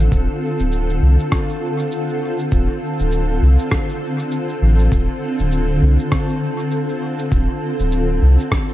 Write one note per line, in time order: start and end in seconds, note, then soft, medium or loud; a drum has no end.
0.00 8.74 D3 medium
0.00 8.74 C4 medium
0.00 8.74 F4 medium
0.00 8.74 A4 medium
0.12 0.27 D1 medium
0.12 kick loud
0.12 cabasa soft
0.59 0.99 D1 medium
0.59 cabasa soft
0.72 cabasa soft
0.90 cabasa soft
1.02 1.17 C2 medium
1.20 cabasa soft
1.32 kick loud
1.32 cross-stick medium
1.32 cabasa soft
1.50 cabasa soft
1.79 cabasa soft
1.92 cabasa soft
2.09 cabasa soft
2.39 cabasa soft
2.52 2.67 D1 medium
2.52 kick loud
2.52 cabasa soft
3.00 3.39 D1 medium
3.00 cabasa soft
3.12 cabasa soft
3.42 3.57 C2 medium
3.59 cabasa soft
3.72 kick loud
3.72 cross-stick medium
3.72 cabasa soft
3.89 cabasa soft
4.19 cabasa soft
4.31 cabasa soft
4.49 cabasa soft
4.62 4.89 A1 medium
4.79 cabasa soft
4.92 5.07 D1 medium
4.92 kick medium
4.92 cabasa soft
5.39 5.79 D1 medium
5.39 cabasa soft
5.52 cabasa soft
5.82 5.97 C2 medium
5.99 cabasa soft
6.12 kick loud
6.12 cross-stick medium
6.12 cabasa soft
6.29 cabasa soft
6.59 cabasa soft
6.71 cabasa soft
6.89 cabasa soft
7.19 cabasa soft
7.32 7.47 D1 loud
7.32 kick loud
7.32 cabasa soft
7.79 8.19 D1 medium
7.79 cabasa soft
7.92 cabasa soft
8.22 8.37 C2 medium
8.40 cabasa soft
8.52 kick medium
8.52 cross-stick medium
8.52 cabasa soft
8.69 cabasa soft